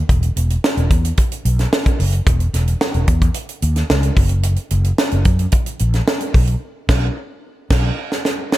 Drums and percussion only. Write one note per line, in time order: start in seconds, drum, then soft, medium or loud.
0.09 kick loud
0.09 closed hi-hat medium
0.23 closed hi-hat soft
0.37 closed hi-hat medium
0.50 closed hi-hat soft
0.64 snare loud
0.77 closed hi-hat soft
0.90 kick medium
0.90 closed hi-hat medium
1.05 closed hi-hat medium
1.17 kick medium
1.17 closed hi-hat medium
1.32 closed hi-hat medium
1.45 closed hi-hat medium
1.59 snare soft
1.59 closed hi-hat soft
1.73 snare loud
1.86 kick medium
1.86 closed hi-hat soft
2.00 open hi-hat medium
2.12 closed hi-hat soft
2.27 kick loud
2.27 closed hi-hat medium
2.40 closed hi-hat soft
2.54 snare soft
2.54 closed hi-hat medium
2.67 closed hi-hat soft
2.81 snare loud
2.94 closed hi-hat soft
3.08 kick medium
3.08 closed hi-hat medium
3.22 kick medium
3.22 closed hi-hat medium
3.34 closed hi-hat medium
3.49 closed hi-hat soft
3.62 closed hi-hat medium
3.76 snare soft
3.76 closed hi-hat soft
3.90 snare loud
4.03 closed hi-hat medium
4.16 kick loud
4.16 open hi-hat medium
4.29 closed hi-hat soft
4.43 closed hi-hat medium
4.56 closed hi-hat soft
4.70 closed hi-hat medium
4.84 closed hi-hat soft
4.98 snare loud
5.11 closed hi-hat soft
5.25 kick medium
5.25 closed hi-hat medium
5.39 closed hi-hat medium
5.52 kick medium
5.52 closed hi-hat medium
5.66 closed hi-hat medium
5.79 closed hi-hat medium
5.94 snare soft
5.94 closed hi-hat soft
6.08 snare loud
6.20 closed hi-hat soft
6.34 kick medium
6.34 open hi-hat medium
6.47 closed hi-hat medium
6.89 kick loud
6.89 snare loud
6.89 crash medium
7.70 kick loud
7.70 snare loud
7.70 crash medium
8.12 snare medium
8.25 snare medium
8.52 snare medium